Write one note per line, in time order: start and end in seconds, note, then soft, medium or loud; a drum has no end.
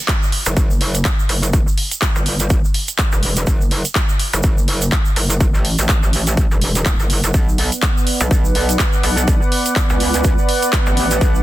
0.08 kick loud
0.08 clap loud
0.08 closed hi-hat medium
0.08 shaker medium
0.23 shaker soft
0.32 open hi-hat loud
0.45 0.55 F#1 loud
0.45 closed hi-hat medium
0.45 shaker medium
0.57 1.03 F#1 loud
0.57 kick loud
0.57 closed hi-hat medium
0.57 shaker medium
0.70 shaker soft
0.81 open hi-hat loud
0.95 closed hi-hat medium
0.95 shaker medium
1.05 kick loud
1.05 clap loud
1.05 closed hi-hat medium
1.05 shaker medium
1.19 shaker soft
1.29 1.65 F#1 loud
1.29 open hi-hat loud
1.43 closed hi-hat medium
1.43 shaker medium
1.53 kick loud
1.53 closed hi-hat medium
1.53 shaker medium
1.68 shaker soft
1.78 open hi-hat loud
1.91 closed hi-hat medium
1.91 shaker medium
2.02 kick loud
2.02 clap loud
2.02 closed hi-hat soft
2.02 shaker medium
2.15 2.62 G1 loud
2.15 shaker soft
2.26 open hi-hat loud
2.40 closed hi-hat medium
2.40 shaker medium
2.50 kick loud
2.50 closed hi-hat medium
2.50 shaker medium
2.65 shaker soft
2.74 open hi-hat loud
2.88 closed hi-hat medium
2.88 shaker medium
2.98 kick loud
2.98 clap loud
2.98 closed hi-hat medium
2.98 shaker medium
3.12 3.45 E1 loud
3.12 shaker soft
3.23 open hi-hat loud
3.36 closed hi-hat medium
3.36 shaker medium
3.47 3.83 F#1 loud
3.47 kick loud
3.47 closed hi-hat medium
3.47 shaker medium
3.61 shaker soft
3.71 open hi-hat loud
3.85 closed hi-hat medium
3.85 shaker medium
3.95 kick loud
3.95 clap loud
3.95 closed hi-hat medium
3.95 shaker medium
4.09 shaker soft
4.19 open hi-hat loud
4.33 4.42 F#1 loud
4.33 closed hi-hat medium
4.33 shaker medium
4.43 4.90 F#1 loud
4.43 kick loud
4.43 closed hi-hat medium
4.43 shaker medium
4.58 shaker soft
4.68 open hi-hat loud
4.82 closed hi-hat medium
4.82 shaker medium
4.92 kick loud
4.92 clap loud
4.92 closed hi-hat soft
4.92 shaker medium
5.05 shaker soft
5.16 5.52 F#1 medium
5.16 open hi-hat loud
5.30 closed hi-hat medium
5.30 shaker medium
5.40 kick loud
5.40 closed hi-hat soft
5.40 shaker medium
5.54 5.76 A1 medium
5.54 shaker soft
5.65 open hi-hat loud
5.78 6.01 A1 loud
5.78 closed hi-hat medium
5.78 shaker medium
5.89 kick loud
5.89 clap loud
5.89 closed hi-hat soft
5.89 shaker medium
6.03 6.49 A1 medium
6.03 shaker soft
6.13 open hi-hat loud
6.27 closed hi-hat medium
6.27 shaker medium
6.37 kick loud
6.37 closed hi-hat medium
6.37 shaker medium
6.51 6.97 E1 loud
6.51 shaker soft
6.61 open hi-hat loud
6.75 closed hi-hat medium
6.75 shaker medium
6.86 kick loud
6.86 clap loud
6.86 closed hi-hat soft
6.86 shaker medium
6.99 7.22 F#1 loud
6.99 shaker soft
7.10 open hi-hat loud
7.24 7.32 F#1 medium
7.24 closed hi-hat medium
7.24 shaker medium
7.34 7.70 B1 medium
7.34 11.43 B3 medium
7.34 11.43 B4 medium
7.34 11.43 D5 medium
7.34 11.43 F#5 medium
7.34 kick loud
7.34 closed hi-hat medium
7.34 shaker medium
7.49 shaker soft
7.58 open hi-hat loud
7.72 closed hi-hat medium
7.72 shaker medium
7.82 kick loud
7.82 clap loud
7.82 closed hi-hat soft
7.82 shaker medium
7.97 shaker soft
8.07 open hi-hat loud
8.20 8.29 B1 loud
8.20 closed hi-hat medium
8.20 shaker medium
8.31 8.78 B1 loud
8.31 kick loud
8.31 closed hi-hat soft
8.31 shaker medium
8.45 shaker soft
8.55 open hi-hat loud
8.69 closed hi-hat medium
8.69 shaker medium
8.79 kick loud
8.79 clap loud
8.79 closed hi-hat soft
8.79 shaker medium
8.93 shaker soft
9.03 9.39 B1 loud
9.03 open hi-hat loud
9.17 closed hi-hat medium
9.17 shaker medium
9.28 kick loud
9.28 closed hi-hat medium
9.28 shaker medium
9.42 shaker soft
9.52 open hi-hat loud
9.66 closed hi-hat medium
9.66 shaker medium
9.76 kick loud
9.76 clap loud
9.76 closed hi-hat soft
9.76 shaker medium
9.90 10.36 C#2 loud
9.90 shaker soft
10.00 open hi-hat loud
10.14 closed hi-hat medium
10.14 shaker medium
10.24 kick loud
10.24 closed hi-hat medium
10.24 shaker medium
10.38 shaker soft
10.49 open hi-hat loud
10.62 closed hi-hat medium
10.62 shaker medium
10.73 kick loud
10.73 clap loud
10.73 closed hi-hat soft
10.73 shaker medium
10.86 11.20 A1 loud
10.86 shaker soft
10.97 open hi-hat loud
11.11 closed hi-hat medium
11.11 shaker medium
11.21 11.43 B1 loud
11.21 kick loud
11.21 closed hi-hat medium
11.21 shaker medium
11.35 shaker soft